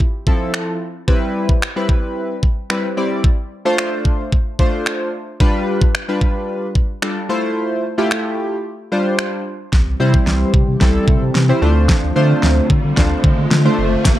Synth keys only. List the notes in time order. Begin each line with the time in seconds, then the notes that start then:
0.27 F3 C4 E4 A4
1.08 G3 C4 E4 B4
1.76 G3 C4 E4 B4
2.70 G3 C4 E4 B4
2.97 G3 C4 E4 D5
3.65 A3 D4 F4 C5
4.59 A3 D4 F4 C5
5.40 G3 D4 F4 B4
6.08 G3 D4 F4 B4
7.02 G3 D4 F4 A4
7.29 A3 E4 F4 C5
7.98 A3 E4 F4 G4
8.92 G3 D4 F4 C5
10.00 G3 C4 E4 C5
10.81 G3 C4 E4 A4
11.49 G3 C4 E4 C5
11.62 A3 D4 F4 C5
12.16 A3 D4 F4 C5
12.97 A3 D4 F4 C5
13.65 A3 D4 F4 C5